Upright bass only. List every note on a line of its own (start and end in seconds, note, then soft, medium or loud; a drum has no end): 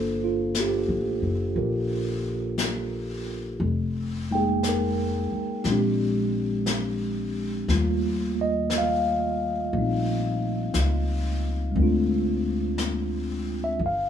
0.00 0.83 G1 medium
0.88 1.20 A1 medium
1.22 1.54 F#1 medium
1.56 3.56 A#1 medium
3.60 5.28 F1 medium
5.32 muted upright bass stroke soft
5.65 7.65 A#1 medium
7.68 9.69 D#2 medium
9.73 10.71 A#1 medium
10.74 11.72 C#2 medium
11.76 13.76 D2 medium
13.79 14.10 G1 medium